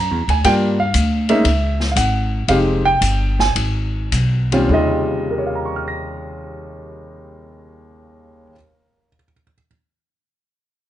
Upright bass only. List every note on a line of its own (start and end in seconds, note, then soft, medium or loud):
0.00 0.11 F#2 medium
0.11 0.27 E2 medium
0.28 0.43 D2 medium
0.44 0.93 G2 medium
0.94 1.44 D2 medium
1.44 1.95 C#2 medium
1.96 2.47 G#1 medium
2.48 3.00 F1 medium
3.01 3.54 G1 medium
3.56 4.10 G#1 medium
4.12 4.68 B1 medium
4.69 8.46 D#2 medium